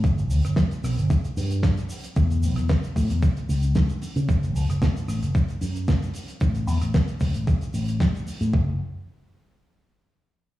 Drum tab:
HH |xxoxxxoxxxoxxxox|xxoxxxoxxxoxxxox|xxoxxxoxxxoxxxox|xxoxxxoxxxoxxxox|
SH |xxxxxxxxxxxxxxxx|xxxxxxxxxxxxxxxx|xxxxxxxxxxxxxxxx|xxxxxxxxxxxxxxxx|
SD |---ro-r-----o---|---ro-------o---|---ro-r-----o---|---ro-------o---|
BD |o---o---o---o---|o---o-o-o---o---|o---o---o---o---|o---o-o-o---o---|

HH |----------------|
SH |----------------|
SD |----------------|
BD |o---------------|